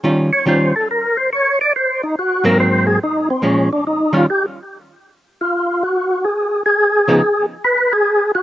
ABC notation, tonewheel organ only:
X:1
M:4/4
L:1/8
Q:"Swing" 1/4=142
K:Abmix
V:1 name="Tonewheel organ"
z d c =A B c d =d | c E G B c A E C | D =D E F =G z3 | z F2 G2 A2 A- |
A3 z _c A2 G |]